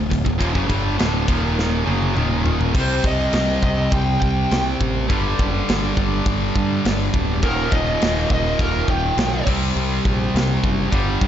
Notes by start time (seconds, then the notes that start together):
0.10 D1 D2 A2, kick, ride
0.25 D1 D2 A2, kick
0.38 D#1 D#2 A#2, kick, ride
0.54 F#1 F#2 C#3, kick
0.67 G1 G2 D3 G3, kick, ride
0.98 D1 D2 A2 D3, snare, ride
1.28 D#1 D#2 A#2 D#3, kick, ride
1.59 snare
1.85 F#1 F#2 C#3 F#3, high tom
2.02 high tom
2.15 D#1 D#2 A#2 D#3, mid tom
2.46 floor tom
2.61 floor tom
2.73 C2 C3 G3 C4, kick, crash
2.80 C5
3.04 C2 D#5, kick
3.33 C2, snare, crash
3.63 C2 D#5, kick
3.92 C2 G5, kick, crash
4.21 C2 G5, kick
4.51 C2, snare, crash
4.81 A1, kick
5.08 G1 G2 D3 G3, kick, crash
5.39 F#1, kick
5.69 G1, snare, crash
5.97 G1, kick
6.26 G1, kick, crash
6.55 G2, kick
6.85 G1, snare, crash
7.14 D1, kick
7.42 D#1 D#2 A#2 D#3 A#4, kick, crash
7.71 D#1 D#5, kick
8.02 D#1, snare, crash
8.30 D#1 D#5, kick
8.59 D#1 A#4, kick, crash
8.88 D#1 G5, kick
9.17 B1, snare, crash
9.46 C2 C3 G3 C4, kick, crash
9.76 C2, crash
10.05 A#1, kick
10.34 C2, snare, crash
10.64 F#1, kick
10.90 G1 G2 D3 G3, kick, crash
11.21 G2, kick